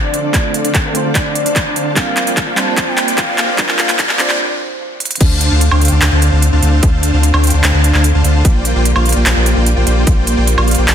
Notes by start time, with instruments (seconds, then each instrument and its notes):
Already playing: string section F3 C4 A4 D5, synth pluck A3 C4 D4 F4 C5, soft synth lead D5, riser
0.03 supersaw synth D3 D4 C5 F5 A5
0.13 supersaw synth D3 D4 C5 F5 A5, closed hi-hat
0.24 soft synth lead D5
0.32 supersaw synth D3 D4 C5 F5 A5, synth pluck A3 C4 D4 F4 A4, kick, clap, closed hi-hat
0.54 soft synth lead D5, closed hi-hat
0.64 supersaw synth D3 D4 C5 F5 A5, closed hi-hat
0.75 kick, clap, closed hi-hat
0.85 supersaw synth D3 D4 C5 F5 G5, soft synth lead A4
0.93 synth pluck A3 C4 D4 F4 C5, closed hi-hat
1.05 supersaw synth D3 D4 C5 F5 A5
1.15 supersaw synth D3 D4 C5 F5 G5, soft synth lead D5, kick, clap, closed hi-hat
1.25 supersaw synth D3 D4 C5 F5 A5
1.35 closed hi-hat
1.46 supersaw synth D3 D4 C5 F5 A5, closed hi-hat
1.56 kick, clap, closed hi-hat
1.66 supersaw synth D3 D4 C5 F5 A5
1.76 supersaw synth D3 D4 C5 F5 A5, closed hi-hat
1.94 string section F3 A#3 G4, synth pluck G3 C4 D4 F4 A#4, supersaw synth A#3 F4 C5 D5 G5, soft synth lead F5, kick, clap, closed hi-hat
2.17 clap, closed hi-hat
2.27 supersaw synth A#3 F4 C5 D5 G5, soft synth lead F5, closed hi-hat
2.37 kick, clap, closed hi-hat
2.47 supersaw synth A#3 F4 C5 D5 F5
2.55 synth pluck G3 C4 D4 F4, soft synth lead A5, clap, closed hi-hat
2.59 synth pluck C5
2.67 supersaw synth A#3 F4 C5 D5 G5
2.77 supersaw synth A#3 F4 C5 D5 F5, kick, clap, closed hi-hat
2.88 supersaw synth A#3 F4 C5 D5 G5, soft synth lead G5
2.98 clap, closed hi-hat
3.08 supersaw synth A#3 F4 C5 D5 G5, closed hi-hat
3.18 soft synth lead F5, kick, clap, closed hi-hat
3.28 supersaw synth A#3 F4 C5 D5 G5
3.38 supersaw synth A#3 F4 C5 D5 G5, clap, closed hi-hat
3.49 soft synth lead F5
3.56 synth pluck G3 C4 D4 F4, supersaw synth A#3 F4 C5 D5 G5, kick, clap, closed hi-hat
3.60 synth pluck A#4
3.69 clap
3.79 soft synth lead F5, clap, closed hi-hat
3.89 supersaw synth A#3 F4 C5 D5 G5, clap, closed hi-hat
3.99 kick, clap, closed hi-hat
4.09 supersaw synth A#3 F4 C5 D5 F5, soft synth lead D5, clap
4.17 synth pluck G3 C4 D4 F4 C5, clap, closed hi-hat
4.29 supersaw synth A#3 F4 C5 D5 G5, clap
5.00 closed hi-hat
5.05 closed hi-hat
5.11 closed hi-hat
5.15 closed hi-hat
5.20 sub bass D2, string section D3 A3 C4 F4, supersaw synth D3 D4 C5 F5 A5, kick, closed hi-hat, crash
5.41 closed hi-hat
5.51 sub bass D2, supersaw synth D3 D4 C5 F5 A5
5.61 closed hi-hat
5.71 sub bass D2, supersaw synth D3 D4 C5 F5 G5, high woodblock
5.81 closed hi-hat
5.85 closed hi-hat
5.88 sub bass D2, supersaw synth D3 D4 C5 F5 A5, closed hi-hat
6.02 sub bass D2, supersaw synth D3 D4 C5 F5 G5, clap, closed hi-hat
6.12 sub bass D2, supersaw synth D3 D4 C5 F5 A5
6.22 closed hi-hat
6.32 sub bass D2, supersaw synth D3 D4 C5 F5 A5
6.42 closed hi-hat
6.53 sub bass D2, supersaw synth D3 D4 C5 F5 A5
6.63 sub bass D2, supersaw synth D3 D4 C5 F5 A5, closed hi-hat
6.83 sub bass D2, supersaw synth D3 D4 C5 F5 A5, kick, closed hi-hat
7.03 closed hi-hat
7.13 sub bass D2, supersaw synth D3 D4 C5 F5 A5
7.23 closed hi-hat
7.33 sub bass D2, supersaw synth D3 D4 C5 F5 G5, high woodblock
7.44 closed hi-hat
7.47 closed hi-hat
7.50 sub bass D2, supersaw synth D3 D4 C5 F5 A5, closed hi-hat
7.64 sub bass D2, supersaw synth D3 D4 C5 F5 G5, clap, closed hi-hat
7.74 sub bass D2, supersaw synth D3 D4 C5 F5 A5
7.84 closed hi-hat
7.94 sub bass D2, supersaw synth D3 D4 C5 F5 A5, clap
8.04 closed hi-hat
8.15 sub bass D2, supersaw synth D3 D4 C5 F5 A5
8.24 sub bass D2, supersaw synth D3 D4 C5 F5 A5, closed hi-hat
8.45 sub bass A#1, string section G3 A#3, supersaw synth A#3 F4 C5 D5 G5, kick, closed hi-hat
8.65 closed hi-hat
8.75 sub bass A#1, supersaw synth A#3 F4 C5 D5 G5
8.85 closed hi-hat
8.96 sub bass A#1, supersaw synth A#3 F4 C5 D5 F5, high woodblock
9.06 closed hi-hat
9.09 closed hi-hat
9.12 sub bass A#1, supersaw synth A#3 F4 C5 D5 G5, closed hi-hat
9.26 sub bass A#1, supersaw synth A#3 F4 C5 D5 F5, clap, closed hi-hat
9.36 sub bass A#1, supersaw synth A#3 F4 C5 D5 G5
9.46 closed hi-hat
9.56 sub bass A#1, supersaw synth A#3 F4 C5 D5 G5
9.66 closed hi-hat
9.77 sub bass A#1, supersaw synth A#3 F4 C5 D5 G5
9.86 sub bass A#1, supersaw synth A#3 F4 C5 D5 G5, closed hi-hat
10.07 sub bass A#1, supersaw synth A#3 F4 C5 D5 G5, kick, closed hi-hat
10.27 closed hi-hat
10.37 sub bass A#1, supersaw synth A#3 F4 C5 D5 G5
10.47 closed hi-hat
10.58 sub bass A#1, supersaw synth A#3 F4 C5 D5 F5, high woodblock
10.68 closed hi-hat
10.71 closed hi-hat
10.75 sub bass A#1, supersaw synth A#3 F4 C5 D5 G5, closed hi-hat
10.88 sub bass A#1, supersaw synth A#3 F4 C5 D5 F5, clap, closed hi-hat